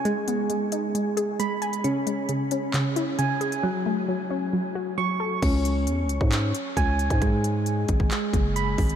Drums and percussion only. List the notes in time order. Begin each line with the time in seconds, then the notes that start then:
0.05 closed hi-hat
0.28 closed hi-hat
0.50 closed hi-hat
0.72 closed hi-hat
0.95 closed hi-hat
1.17 closed hi-hat
1.40 closed hi-hat
1.62 closed hi-hat
1.73 closed hi-hat
1.84 closed hi-hat
2.07 closed hi-hat
2.29 closed hi-hat
2.51 closed hi-hat
2.74 clap, closed hi-hat
2.96 closed hi-hat
3.19 closed hi-hat
3.41 closed hi-hat
3.52 closed hi-hat
5.42 kick, closed hi-hat, crash
5.65 closed hi-hat
5.87 closed hi-hat
6.09 closed hi-hat
6.21 kick
6.32 clap, closed hi-hat
6.55 closed hi-hat
6.77 kick, closed hi-hat
6.99 closed hi-hat
7.10 kick, closed hi-hat
7.22 kick, closed hi-hat
7.44 closed hi-hat
7.66 closed hi-hat
7.88 kick, closed hi-hat
8.00 kick
8.11 clap, closed hi-hat
8.33 kick, closed hi-hat
8.56 closed hi-hat
8.78 kick, closed hi-hat, open hi-hat
8.89 closed hi-hat